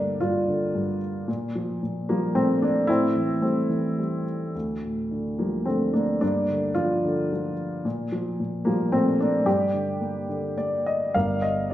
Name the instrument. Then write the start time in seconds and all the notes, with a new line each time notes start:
grand piano
Already playing: G2 D3 A#3 D4
0.20 G2 D4 F4
0.48 D3
0.75 G2
1.28 A#2
1.55 F3
1.83 A#2
2.09 F3 G3 A#3
2.35 A#2 A3 C4
2.62 A#3 D4
2.87 A2 C4 E4
3.16 E3
3.42 G3 A3 C4
3.70 E3
3.99 G3
4.55 D2
4.83 A2
5.11 D3
5.39 F3 G3 A#3
5.66 D3 A3 C4
5.93 A#3 D4
6.21 G2 A#3 D4
6.50 D3
6.74 F3 D4 F4
7.05 D3
7.32 F3
7.85 A#2
8.12 F3
8.40 A#2
8.65 F3 G3 A#3
8.92 A#2 A3 C4
9.20 A#3 D4
9.45 G2 D4 G4
9.74 D3
10.01 A#3
10.29 D3
10.57 A#3 D5
10.86 D#5
11.14 G1 G2 A#4 D5 F5
11.42 D#5
11.70 D5